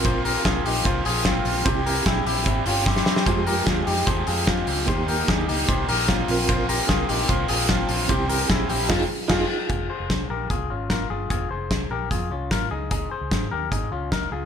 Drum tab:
CC |----------------|----------------|----------------|----------------|
RD |x---x---x---x---|x---x---x-------|x---x---x---x---|x---x---x---x---|
HH |p-o-p-o-p-o-p-o-|p-o-p-o-p-o-----|p-o-p-o-p-o---o-|p-o-p-o-p-o-p-o-|
SD |----o-------o---|----o-------oooo|----o-------o---|----o-------o---|
BD |o---o---o---o---|o---o---o---o---|o---o---o---o---|o---o---o---o---|

CC |----------------|--------x---x---|----------------|----------------|
RD |x---x---x---x---|x---x-----------|----------------|----------------|
HH |p-o-p-o-p-o-p-o-|p-o-p-o---------|x---x---x---x---|x---x---x---x---|
SD |----o-------o---|----o---o---o---|----o-------o---|----o-------o---|
BD |o---o---o---o---|o---o---o---o---|o---o---o---o---|o---o---o---o---|

CC |----------------|
RD |----------------|
HH |x---x---x---x---|
SD |----o-------o---|
BD |o---o---o---o---|